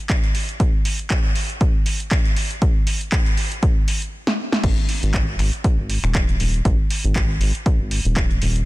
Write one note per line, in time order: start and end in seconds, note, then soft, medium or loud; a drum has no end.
0.09 kick loud
0.09 clap loud
0.09 closed hi-hat medium
0.24 closed hi-hat soft
0.35 open hi-hat loud
0.49 closed hi-hat medium
0.60 kick loud
0.60 closed hi-hat medium
0.85 open hi-hat loud
0.99 closed hi-hat medium
1.10 kick loud
1.10 clap loud
1.10 closed hi-hat medium
1.35 open hi-hat loud
1.50 closed hi-hat medium
1.61 kick loud
1.61 closed hi-hat medium
1.86 open hi-hat loud
2.00 closed hi-hat medium
2.11 kick loud
2.11 clap loud
2.11 closed hi-hat medium
2.25 closed hi-hat soft
2.36 open hi-hat loud
2.51 closed hi-hat medium
2.62 kick loud
2.62 closed hi-hat medium
2.87 open hi-hat loud
3.01 closed hi-hat soft
3.12 kick loud
3.12 clap loud
3.12 closed hi-hat medium
3.26 closed hi-hat soft
3.37 open hi-hat medium
3.52 closed hi-hat soft
3.63 kick loud
3.63 closed hi-hat medium
3.88 open hi-hat loud
4.02 closed hi-hat medium
4.27 snare medium
4.52 snare loud
4.63 4.75 G#1 medium
4.63 kick loud
4.63 closed hi-hat medium
4.63 crash loud
4.89 open hi-hat loud
5.03 5.36 G#1 loud
5.03 closed hi-hat medium
5.14 kick loud
5.14 clap loud
5.14 closed hi-hat medium
5.39 5.51 G#1 loud
5.39 finger snap medium
5.39 open hi-hat medium
5.53 closed hi-hat medium
5.64 kick loud
5.64 closed hi-hat medium
5.78 5.98 G#1 medium
5.90 open hi-hat loud
6.03 6.36 D#1 loud
6.03 finger snap medium
6.15 kick loud
6.15 clap loud
6.15 closed hi-hat medium
6.29 closed hi-hat soft
6.40 6.61 D#1 loud
6.40 open hi-hat medium
6.54 closed hi-hat medium
6.65 6.77 G#1 loud
6.65 kick loud
6.65 closed hi-hat medium
6.90 open hi-hat loud
7.04 7.37 G#1 loud
7.04 closed hi-hat medium
7.16 kick loud
7.16 clap loud
7.16 closed hi-hat medium
7.41 7.52 G#1 loud
7.41 open hi-hat loud
7.55 closed hi-hat medium
7.66 kick loud
7.66 closed hi-hat medium
7.80 8.00 G#1 medium
7.91 open hi-hat loud
8.05 8.38 D#1 loud
8.05 closed hi-hat medium
8.16 kick loud
8.16 clap loud
8.16 closed hi-hat medium
8.31 closed hi-hat soft
8.42 8.63 D#1 loud
8.42 open hi-hat loud
8.56 closed hi-hat medium